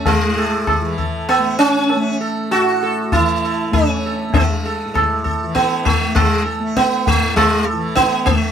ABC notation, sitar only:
X:1
M:7/4
L:1/8
Q:1/4=99
K:none
V:1 name="Sitar"
z A z A z3 A z A z A z A | z A A A z3 A z3 A z2 |]
V:2 name="Sitar"
^G,3 z B, ^C2 z ^F2 E2 C2 | ^G,3 z B, A, G, z B, A, G, z B, A, |]